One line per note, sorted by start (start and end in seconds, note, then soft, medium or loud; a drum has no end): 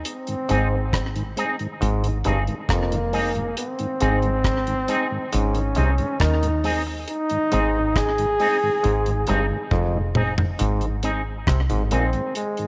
0.05 1.33 C4 loud
0.05 closed hi-hat medium
0.27 0.35 G#2 medium
0.27 0.35 D#3 medium
0.27 closed hi-hat soft
0.49 1.34 G#1 medium
0.49 0.75 G#2 medium
0.49 0.57 G#3 medium
0.49 0.57 C4 medium
0.49 0.67 C4 medium
0.49 0.57 D#4 medium
0.49 0.67 D#4 medium
0.49 0.67 G#4 medium
0.49 closed hi-hat medium
0.93 kick loud
0.93 cross-stick loud
0.93 closed hi-hat medium
1.16 1.23 G#2 medium
1.16 1.23 D#3 medium
1.16 closed hi-hat soft
1.37 1.45 G#3 medium
1.37 1.45 C4 medium
1.37 1.55 C4 medium
1.37 1.45 D#4 medium
1.37 1.55 D#4 medium
1.37 1.55 G#4 medium
1.37 closed hi-hat medium
1.59 1.67 G#2 medium
1.59 1.67 D#3 medium
1.59 closed hi-hat soft
1.81 2.23 G#1 medium
1.81 2.07 G#2 medium
1.81 closed hi-hat medium
2.03 2.11 G#2 medium
2.03 2.11 D#3 medium
2.03 closed hi-hat soft
2.24 2.47 G1 loud
2.24 2.39 G2 medium
2.24 2.33 G#3 medium
2.24 2.42 C4 medium
2.24 2.33 C4 medium
2.24 2.33 D#4 medium
2.24 2.43 D#4 medium
2.24 2.43 G#4 medium
2.24 closed hi-hat medium
2.47 2.55 G#2 medium
2.47 2.55 D#3 medium
2.47 closed hi-hat soft
2.69 3.53 F1 medium
2.69 2.95 F2 medium
2.69 3.54 A#3 medium
2.69 kick loud
2.69 cross-stick loud
2.69 closed hi-hat medium
2.92 2.99 G#2 medium
2.92 2.99 D#3 medium
2.92 closed hi-hat medium
3.13 3.21 G#3 medium
3.13 3.30 C4 medium
3.13 3.21 C4 medium
3.13 3.30 D#4 medium
3.13 3.21 D#4 medium
3.13 3.31 G#4 medium
3.13 open hi-hat medium
3.35 3.43 G#2 medium
3.35 3.43 D#3 medium
3.35 closed hi-hat soft
3.57 5.29 C4 loud
3.57 closed hi-hat medium
3.79 3.87 G#2 medium
3.79 3.87 D#3 medium
3.79 closed hi-hat soft
4.00 4.85 G#1 loud
4.00 4.27 G#2 medium
4.00 4.09 G#3 medium
4.00 4.18 C4 medium
4.00 4.09 C4 medium
4.00 4.18 D#4 medium
4.00 4.09 D#4 medium
4.00 4.18 G#4 medium
4.00 closed hi-hat medium
4.22 4.31 G#2 medium
4.22 4.31 D#3 medium
4.22 closed hi-hat soft
4.44 kick loud
4.44 cross-stick loud
4.44 closed hi-hat medium
4.67 4.75 G#2 medium
4.67 4.75 D#3 medium
4.67 closed hi-hat soft
4.88 4.96 G#3 medium
4.88 5.06 C4 medium
4.88 4.96 C4 medium
4.88 5.06 D#4 loud
4.88 4.97 D#4 medium
4.88 5.06 G#4 medium
4.88 closed hi-hat medium
5.11 5.18 G#2 medium
5.11 5.18 D#3 medium
5.33 5.75 G#1 loud
5.33 5.59 G#2 medium
5.33 6.22 C#4 medium
5.33 closed hi-hat medium
5.55 5.62 G#2 medium
5.55 5.62 D#3 medium
5.55 muted clean electric guitar stroke soft
5.55 closed hi-hat soft
5.75 5.99 C2 medium
5.75 5.90 C3 medium
5.75 5.84 G#3 medium
5.75 5.93 C4 medium
5.75 5.84 C4 medium
5.75 5.94 D#4 medium
5.75 5.85 D#4 medium
5.75 5.94 G#4 medium
5.75 closed hi-hat medium
5.98 6.06 G#2 medium
5.98 6.06 D#3 medium
5.98 closed hi-hat soft
6.20 7.04 D#2 medium
6.20 6.47 D#3 medium
6.20 6.82 D#4 loud
6.20 kick loud
6.20 cross-stick loud
6.20 closed hi-hat medium
6.43 6.50 G#2 medium
6.43 6.50 D#3 medium
6.43 closed hi-hat medium
6.64 6.72 G#3 medium
6.64 6.81 C4 medium
6.64 6.72 C4 medium
6.64 6.72 D#4 medium
6.64 6.82 D#4 medium
6.64 6.82 G#4 loud
6.64 open hi-hat medium
6.87 muted clean electric guitar stroke medium
7.08 7.99 D#4 loud
7.08 closed hi-hat medium
7.29 7.38 G#2 medium
7.29 7.38 D#3 medium
7.29 closed hi-hat soft
7.52 8.36 G#1 medium
7.52 7.78 G#2 medium
7.52 7.60 G#3 medium
7.52 7.69 C4 medium
7.52 7.60 C4 medium
7.52 7.60 D#4 medium
7.52 7.70 D#4 medium
7.52 7.70 G#4 medium
7.52 closed hi-hat medium
7.96 10.16 G#4 loud
7.96 kick loud
7.96 cross-stick loud
7.96 closed hi-hat medium
8.18 8.26 G#2 medium
8.18 8.26 D#3 medium
8.18 closed hi-hat medium
8.40 8.48 G#3 medium
8.40 8.57 C4 medium
8.40 8.48 C4 medium
8.40 8.57 D#4 medium
8.40 8.48 D#4 medium
8.40 8.58 G#4 medium
8.40 open hi-hat medium
8.63 8.70 G#2 medium
8.63 8.70 D#3 medium
8.83 9.26 G#1 loud
8.83 9.10 G#2 medium
8.83 closed hi-hat medium
9.06 9.14 G#2 medium
9.06 9.14 D#3 medium
9.06 closed hi-hat soft
9.27 9.50 G1 loud
9.27 9.41 G2 medium
9.27 9.36 G#3 medium
9.27 9.45 C4 medium
9.27 9.36 C4 medium
9.27 9.45 D#4 medium
9.27 9.36 D#4 medium
9.27 9.46 G#4 medium
9.27 closed hi-hat medium
9.51 9.58 G#2 medium
9.51 9.58 D#3 medium
9.71 10.56 F1 medium
9.71 9.98 F2 medium
9.71 kick loud
9.71 high tom medium
9.94 10.02 G#2 medium
9.94 10.02 D#3 medium
10.15 10.23 G#3 medium
10.15 10.23 C4 medium
10.15 10.33 C4 medium
10.15 10.23 D#4 medium
10.15 10.33 D#4 medium
10.15 10.33 G#4 medium
10.15 mid tom medium
10.38 10.45 G#2 medium
10.38 10.45 D#3 medium
10.38 floor tom medium
10.59 11.44 G#1 medium
10.59 10.85 G#2 medium
10.59 closed hi-hat medium
10.81 10.89 G#2 medium
10.81 10.89 D#3 medium
10.81 closed hi-hat soft
11.03 11.11 G#3 medium
11.03 11.11 C4 medium
11.03 11.21 C4 medium
11.03 11.11 D#4 medium
11.03 11.21 D#4 loud
11.03 11.21 G#4 loud
11.03 closed hi-hat medium
11.47 11.69 C2 medium
11.47 11.61 C3 medium
11.47 kick loud
11.47 cross-stick loud
11.47 closed hi-hat medium
11.70 11.91 G#1 medium
11.70 11.83 G#2 medium
11.70 11.77 G#2 medium
11.70 11.77 D#3 medium
11.70 closed hi-hat soft
11.91 12.13 A#1 medium
11.91 12.05 A#2 medium
11.91 11.99 G#3 medium
11.91 12.08 C4 medium
11.91 11.99 C4 medium
11.91 12.33 C4 medium
11.91 12.09 D#4 medium
11.91 11.99 D#4 medium
11.91 12.09 G#4 medium
11.91 closed hi-hat medium
12.13 12.21 G#2 medium
12.13 12.21 D#3 medium
12.13 closed hi-hat soft
12.35 12.67 G#3 medium
12.35 closed hi-hat medium
12.57 12.66 G#2 soft
12.57 12.66 D#3 medium
12.57 closed hi-hat soft